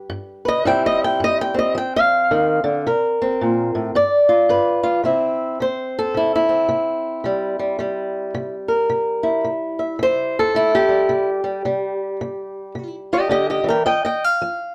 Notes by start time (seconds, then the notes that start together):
Already playing: G3 G4 B4
0.10 G2
0.45 B4 D#5
0.65 G2 G3 C4 E4 G5
0.86 D#5
1.04 G5
1.20 G2 D#5
1.41 G5
1.54 C4
1.59 D#5
1.75 F3 G5
1.96 F5
2.31 D#3
2.64 D3
2.87 C3 A#4
3.22 C4
3.41 A#2
3.75 A2
3.95 G2 D5
4.29 F4
4.49 G2 B4
4.83 F4
5.03 C3 C4 E4 E5
5.60 C3 C5
5.99 A4
6.14 C3 E4
6.36 E4
6.49 C4
6.69 C3
7.24 C3 G3
7.59 G3
7.79 C3 G3
8.35 C3
8.68 A#4
8.90 C3
9.23 E4
9.44 C3
9.79 E5
9.99 C3 C5
10.39 A4
10.55 C3 E4
10.75 G4
10.89 G3
11.09 C3
11.44 G3
11.65 C3 G3
12.21 C3
12.75 C3
13.13 G4 D#5
13.29 D3 G4 D#5
13.50 G4 D#5
13.64 E3
13.68 A#4 G5
13.86 F3 D#5 G5
14.05 D#5 G5
14.24 F5
14.42 F3